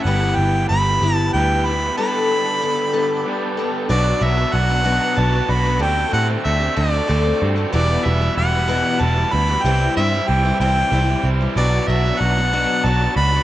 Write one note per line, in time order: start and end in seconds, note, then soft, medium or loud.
0.03 0.33 G1 medium
0.03 0.70 G3 medium
0.03 1.96 B3 medium
0.03 0.70 B3 medium
0.03 1.96 E4 medium
0.03 1.96 G4 medium
0.03 1.96 B4 medium
0.03 0.37 F#5 loud
0.07 0.71 E4 medium
0.07 0.72 G4 medium
0.36 0.65 G1 medium
0.36 0.69 G5 loud
0.69 0.98 G1 medium
0.69 1.02 G3 medium
0.69 1.02 B3 medium
0.69 1.02 E4 medium
0.69 1.01 G4 medium
0.69 1.15 B5 loud
1.02 1.30 G1 medium
1.02 1.67 G3 medium
1.02 1.67 B3 medium
1.02 1.65 E4 medium
1.02 1.64 G4 medium
1.15 1.30 A5 loud
1.33 1.89 D2 medium
1.33 1.96 G3 medium
1.33 1.99 B3 medium
1.33 1.97 E4 medium
1.33 1.97 G4 medium
1.33 1.67 G5 loud
1.65 1.96 B3 soft
1.65 1.97 E4 medium
1.65 1.98 G4 medium
1.65 1.97 B5 loud
1.97 3.24 G2 medium
1.97 3.24 D3 medium
1.97 2.60 G3 medium
1.97 3.88 B3 medium
1.97 2.61 B3 medium
1.97 3.87 D4 medium
1.97 2.62 D4 medium
1.97 3.88 G4 medium
1.97 3.25 G4 medium
1.97 3.88 A4 medium
1.97 2.62 A4 medium
1.97 3.54 B5 loud
2.62 2.94 G3 medium
2.62 2.93 B3 medium
2.62 2.93 D4 medium
2.62 2.92 A4 medium
2.93 3.58 G3 medium
2.93 3.58 B3 medium
2.93 3.58 D4 medium
2.93 3.56 A4 medium
3.25 3.88 G2 medium
3.25 3.88 D3 medium
3.25 3.88 G3 medium
3.25 3.88 B3 medium
3.25 3.89 D4 medium
3.25 3.89 G4 medium
3.57 3.89 B3 medium
3.57 3.89 D4 medium
3.57 3.90 A4 medium
3.89 4.12 B1 loud
3.89 4.21 B2 medium
3.89 4.19 F#3 medium
3.89 4.20 B3 medium
3.89 5.80 B3 medium
3.89 4.15 D4 medium
3.89 4.21 D4 loud
3.89 5.80 D4 medium
3.89 4.15 F#4 medium
3.89 4.21 F#4 medium
3.89 5.80 F#4 medium
3.89 4.15 B4 medium
3.89 5.80 B4 medium
3.89 4.16 D5 medium
3.89 4.25 D5 loud
4.20 4.44 B1 medium
4.20 4.37 F#3 medium
4.20 4.38 B3 medium
4.20 4.45 D4 medium
4.20 4.37 D4 medium
4.20 4.45 F#4 medium
4.20 4.36 F#4 medium
4.20 4.46 B4 medium
4.20 4.46 D5 medium
4.20 4.55 E5 loud
4.37 4.69 B3 soft
4.37 4.69 D4 medium
4.37 4.68 F#4 medium
4.53 4.98 B1 medium
4.53 5.16 F#3 medium
4.53 4.86 B3 medium
4.53 5.02 D4 medium
4.53 4.84 D4 medium
4.53 5.02 F#4 medium
4.53 4.84 F#4 loud
4.53 5.02 B4 medium
4.53 5.02 D5 medium
4.53 5.20 F#5 loud
4.69 4.84 B3 soft
4.69 4.84 D4 medium
4.69 4.84 F#4 medium
4.84 5.17 B2 medium
4.84 5.15 F#3 medium
4.84 5.16 B3 medium
4.84 5.16 D4 medium
4.84 5.17 F#4 loud
5.16 5.40 B1 loud
5.16 5.33 F#3 medium
5.16 5.33 B3 medium
5.16 5.42 D4 medium
5.16 5.33 D4 medium
5.16 5.42 F#4 medium
5.16 5.31 F#4 medium
5.16 5.42 B4 medium
5.16 5.42 D5 medium
5.16 5.52 A5 loud
5.33 5.64 B3 soft
5.33 5.64 D4 soft
5.33 5.63 F#4 medium
5.48 5.81 B1 medium
5.48 5.81 B3 medium
5.48 5.81 D4 medium
5.48 5.80 D4 medium
5.48 5.81 F#4 medium
5.48 5.79 F#4 medium
5.48 5.81 B4 medium
5.48 5.80 D5 medium
5.48 5.81 B5 loud
5.64 5.79 B3 medium
5.64 5.80 D4 soft
5.64 5.81 F#4 medium
5.79 6.04 D2 loud
5.79 6.10 D3 medium
5.79 6.12 A3 medium
5.79 6.12 C4 medium
5.79 7.72 C4 medium
5.79 7.71 D4 medium
5.79 6.07 G4 medium
5.79 6.07 A4 medium
5.79 7.71 A4 medium
5.79 6.07 C5 medium
5.79 6.07 D5 medium
5.79 6.12 G5 loud
5.83 6.11 F#4 loud
6.12 6.36 A2 medium
6.12 6.29 D3 medium
6.12 6.29 A3 medium
6.12 6.28 C4 medium
6.12 6.45 F#4 medium
6.12 6.37 G4 medium
6.12 6.30 G4 medium
6.12 6.37 A4 medium
6.12 6.38 C5 medium
6.12 6.38 D5 medium
6.12 6.28 F#5 loud
6.29 6.61 A3 soft
6.29 6.60 C4 soft
6.44 6.68 D2 medium
6.44 7.07 D3 medium
6.44 6.77 A3 medium
6.44 6.76 C4 medium
6.44 6.75 F#4 medium
6.44 6.94 A4 medium
6.44 6.94 C5 medium
6.44 6.94 D5 medium
6.44 6.78 E5 loud
6.60 6.75 A3 soft
6.60 6.76 C4 medium
6.60 6.77 G4 medium
6.76 7.00 D2 medium
6.76 7.07 D3 medium
6.76 7.07 A3 medium
6.76 7.08 C4 medium
6.76 7.09 F#4 medium
6.76 7.49 D5 loud
7.08 7.32 D2 loud
7.08 7.25 D3 medium
7.08 7.25 A3 medium
7.08 7.24 C4 medium
7.08 7.39 F#4 medium
7.08 7.33 G4 medium
7.08 7.26 G4 medium
7.08 7.34 A4 medium
7.08 7.34 C5 medium
7.08 7.34 D5 medium
7.26 7.56 A3 soft
7.26 7.56 C4 medium
7.40 7.64 G2 medium
7.40 7.72 A3 medium
7.40 7.71 C4 medium
7.40 7.71 F#4 medium
7.40 7.72 G4 medium
7.40 7.73 A4 medium
7.40 7.73 C5 medium
7.40 7.73 D5 medium
7.56 7.73 A3 medium
7.56 7.73 C4 soft
7.56 7.73 G4 medium
7.72 7.96 E1 loud
7.72 8.05 E2 medium
7.72 8.05 B2 medium
7.72 8.04 E3 loud
7.72 9.63 G3 medium
7.72 8.04 G3 loud
7.72 8.05 B3 medium
7.72 9.63 B3 medium
7.72 9.63 E4 medium
7.72 8.04 E4 loud
7.72 7.98 F#4 medium
7.72 8.06 F#4 medium
7.72 7.99 G4 medium
7.72 7.98 B4 medium
7.72 8.07 D5 loud
7.72 7.99 E5 loud
7.72 9.63 F#5 medium
8.05 8.28 E1 loud
8.05 8.21 E3 medium
8.05 8.21 G3 medium
8.05 8.20 B3 medium
8.05 8.37 E4 medium
8.05 8.30 F#4 medium
8.05 8.20 F#4 medium
8.05 8.30 G4 medium
8.05 8.30 B4 medium
8.05 8.37 E5 loud
8.05 8.30 E5 medium
8.21 8.54 E3 soft
8.21 8.53 G3 medium
8.21 8.52 B3 medium
8.21 8.52 F#4 medium
8.35 8.82 E1 loud
8.35 8.68 E3 medium
8.35 8.68 G3 medium
8.35 8.67 B3 medium
8.35 8.66 E4 medium
8.35 8.86 F#4 medium
8.35 8.86 G4 medium
8.35 8.86 B4 medium
8.35 8.86 E5 medium
8.35 9.02 F#5 loud
8.53 8.67 E3 soft
8.53 8.68 G3 soft
8.53 8.68 B3 medium
8.53 8.68 F#4 medium
8.68 9.00 E2 medium
8.68 9.00 B2 medium
8.68 8.98 E3 medium
8.68 8.99 G3 medium
8.68 8.99 B3 medium
8.68 9.00 E4 medium
8.68 9.00 F#4 loud
8.99 9.23 E1 loud
8.99 9.16 E3 medium
8.99 9.16 G3 medium
8.99 9.15 B3 medium
8.99 9.31 E4 medium
8.99 9.15 F#4 medium
8.99 9.25 F#4 medium
8.99 9.26 G4 medium
8.99 9.26 B4 medium
8.99 9.26 E5 medium
8.99 9.34 A5 loud
9.16 9.49 E3 soft
9.16 9.48 G3 medium
9.16 9.48 B3 medium
9.16 9.47 F#4 medium
9.31 9.55 D2 medium
9.31 9.63 E3 medium
9.31 9.63 G3 medium
9.31 9.63 B3 medium
9.31 9.62 E4 medium
9.31 9.64 F#4 medium
9.31 9.63 G4 medium
9.31 9.65 B4 medium
9.31 9.63 E5 medium
9.31 9.66 B5 loud
9.48 9.64 E3 soft
9.48 9.64 G3 soft
9.48 9.65 B3 medium
9.48 9.64 F#4 medium
9.64 9.87 C2 medium
9.64 9.97 C3 medium
9.64 9.96 E3 medium
9.64 11.54 G3 medium
9.64 9.97 G3 medium
9.64 11.54 C4 medium
9.64 9.97 C4 medium
9.64 9.90 E4 medium
9.64 11.54 E4 medium
9.64 9.97 E4 medium
9.64 9.90 G4 medium
9.64 11.54 G4 medium
9.64 9.90 C5 medium
9.64 9.90 E5 loud
9.64 9.96 G5 loud
9.96 10.19 G2 medium
9.96 10.13 E3 medium
9.96 10.13 G3 medium
9.96 10.13 C4 medium
9.96 10.21 E4 medium
9.96 10.12 E4 medium
9.96 10.21 G4 medium
9.96 10.20 C5 medium
9.96 10.21 E5 medium
9.96 10.29 E5 loud
10.13 10.45 G3 soft
10.13 10.44 C4 medium
10.13 10.44 E4 soft
10.27 10.51 C2 medium
10.27 10.90 E3 medium
10.27 10.61 G3 medium
10.27 10.61 C4 medium
10.27 10.76 E4 medium
10.27 10.59 E4 medium
10.27 10.76 G4 medium
10.27 10.77 C5 medium
10.27 10.77 E5 medium
10.27 10.60 G5 medium
10.45 10.61 G3 soft
10.45 10.61 C4 medium
10.45 10.61 E4 medium
10.60 10.82 C2 medium
10.60 10.93 C3 medium
10.60 10.92 E3 medium
10.60 10.93 G3 medium
10.60 10.93 C4 medium
10.60 10.93 E4 medium
10.60 11.28 G5 loud
10.92 11.14 C2 loud
10.92 11.09 E3 medium
10.92 11.09 G3 medium
10.92 11.09 C4 medium
10.92 11.16 E4 medium
10.92 11.08 E4 medium
10.92 11.17 G4 medium
10.92 11.17 C5 medium
10.92 11.17 E5 medium
11.09 11.41 G3 soft
11.09 11.41 C4 medium
11.09 11.39 E4 medium
11.23 11.46 C2 medium
11.23 11.55 G3 medium
11.23 11.54 C4 medium
11.23 11.54 E4 medium
11.23 11.56 E4 medium
11.23 11.56 G4 medium
11.23 11.56 C5 medium
11.23 11.56 E5 medium
11.41 11.57 G3 soft
11.41 11.57 C4 medium
11.41 11.56 E4 medium
11.55 11.79 B1 loud
11.55 11.88 B2 medium
11.55 11.87 F#3 medium
11.55 13.43 F#3 medium
11.55 13.43 B3 medium
11.55 11.88 B3 medium
11.55 11.81 D4 medium
11.55 11.89 D4 medium
11.55 13.43 D4 medium
11.55 11.82 F#4 medium
11.55 13.43 F#4 medium
11.55 11.89 F#4 medium
11.55 11.82 B4 medium
11.55 11.82 D5 loud
11.55 11.89 D5 loud
11.87 12.10 B1 medium
11.87 12.04 F#3 medium
11.87 12.05 B3 medium
11.87 12.12 D4 medium
11.87 12.05 D4 medium
11.87 12.12 F#4 medium
11.87 12.04 F#4 medium
11.87 12.12 B4 medium
11.87 12.12 D5 medium
11.87 12.22 E5 loud
12.05 12.37 B3 soft
12.05 12.36 D4 soft
12.05 12.36 F#4 medium
12.19 12.65 B1 medium
12.19 12.82 F#3 medium
12.19 12.52 B3 medium
12.19 12.68 D4 medium
12.19 12.51 D4 medium
12.19 12.68 F#4 medium
12.19 12.50 F#4 medium
12.19 12.68 B4 medium
12.19 12.69 D5 medium
12.19 12.86 F#5 loud
12.37 12.52 B3 soft
12.37 12.53 D4 medium
12.37 12.52 F#4 medium
12.52 12.84 B2 medium
12.52 12.83 F#3 medium
12.52 12.84 B3 medium
12.52 12.85 D4 medium
12.52 12.85 F#4 medium
12.84 13.07 B1 loud
12.84 13.00 F#3 medium
12.84 13.01 B3 medium
12.84 13.08 D4 medium
12.84 13.00 D4 medium
12.84 13.08 F#4 medium
12.84 13.00 F#4 medium
12.84 13.08 B4 medium
12.84 13.08 D5 medium
12.84 13.16 A5 loud
13.01 13.33 B3 soft
13.01 13.32 D4 soft
13.01 13.31 F#4 medium
13.15 13.38 C#2 medium
13.15 13.43 B3 medium
13.15 13.43 D4 medium
13.15 13.43 F#4 medium
13.15 13.43 B4 medium
13.15 13.43 D5 medium
13.15 13.43 B5 loud
13.32 13.43 B3 soft
13.32 13.43 D4 medium
13.32 13.43 F#4 medium